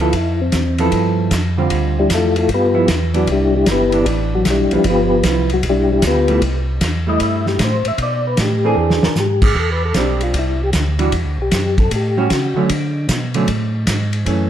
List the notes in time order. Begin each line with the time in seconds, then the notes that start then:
Already playing: D2
0.00 F3 B3 E4 F4 A4
0.13 F2, kick, ride
0.17 E4
0.42 C4
0.52 E2, kick, snare, hi-hat pedal, ride
0.78 F3 B3 E4 A4, ride
0.92 G2, kick, ride
1.31 F2, kick, snare, hi-hat pedal, ride
1.57 D3 G3 C4 F4
1.70 D2, kick, ride
1.99 G3 D4 E4 G4
2.09 F2, kick, snare, hi-hat pedal, ride
2.14 A3 E4 F4 A4
2.36 A3 E4 F4 A4, ride
2.49 G2, kick, ride
2.54 B3 F4 G4 B4
2.74 F3 B3 E4
2.88 E2, kick, snare, hi-hat pedal, ride
3.14 E3 F#3 B3 D4 F#4, ride
3.27 C2, kick, ride
3.31 G3 D4 E4 G4
3.56 G3 D4 E4 G4
3.66 G1, kick, snare, hi-hat pedal, ride
3.71 B3 E4 G4 B4
3.92 E3 B3 D4, ride
4.06 A1, kick, ride
4.35 F#3 F#4
4.45 B1, kick, snare, hi-hat pedal, ride
4.50 G3 D4 E4 G4
4.71 B1 F3 G3 B3 D4 E4 G4, ride
4.84 G1, kick, ride
4.90 B3 F4 G4 B4
5.23 C2 F3 B3 E4, kick, snare, hi-hat pedal, ride
5.50 F#4, ride
5.54 F#3
5.63 B1, kick, ride
5.69 G3 D4 E4 G4
5.93 G3 D4 E4 G4
6.02 D2, kick, snare, hi-hat pedal, ride
6.07 B3 F4 G4 B4
6.28 G3 A3 E4, ride
6.42 C2, kick, ride
6.81 E2, kick, snare, hi-hat pedal, ride
7.07 G3 A3 E4 D#5
7.20 G2 E5, kick, ride
7.46 G4, snare
7.59 A2, kick, snare, hi-hat pedal, ride
7.64 C5
7.85 A2 E5, ride
7.98 B2, kick, ride
8.02 D5
8.27 B4
8.37 A2, kick, snare, hi-hat pedal, ride
8.41 G4
8.64 E3 C4 D4 G#4 A4
8.77 E2 G#4
8.90 snare
9.02 E2 A#4, snare
9.15 G#2, snare, hi-hat pedal
9.20 G4
9.42 G#4, kick, crash
9.55 E2, kick
9.60 A4
9.72 B4
9.85 A4
9.94 B1 G3 C4 D4, kick, snare, hi-hat pedal, ride
10.00 G4
10.21 F4, ride
10.34 C2, kick, ride
10.39 E4
10.63 G4
10.73 D2, kick, snare, hi-hat pedal, ride
10.99 E3 G3 D4 F#4, ride
11.12 E2, kick, ride
11.25 D2
11.38 B1 G4
11.51 F#2, kick, snare, hi-hat pedal, ride
11.78 A4, kick, ride
11.91 A2, kick, ride
11.96 G4
12.17 G3 C#4 F#4
12.30 C#3, kick, snare, hi-hat pedal, ride
12.56 C#3 D3 F#3 A3 C#4
12.69 D3, kick, ride
13.09 B2, kick, snare, hi-hat pedal, ride
13.34 D3 F#3 A3 C#4, ride
13.47 A2, kick, ride
13.87 G#2, kick, snare, hi-hat pedal, ride
14.13 ride
14.26 F#2 E3 A3 C#4, kick, ride